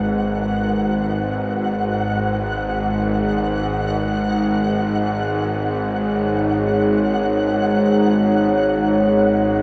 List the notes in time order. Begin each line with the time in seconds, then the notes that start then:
Already playing: G#1 G#2 G#3 D#4 G#4 B4 F#5
5.04 C#5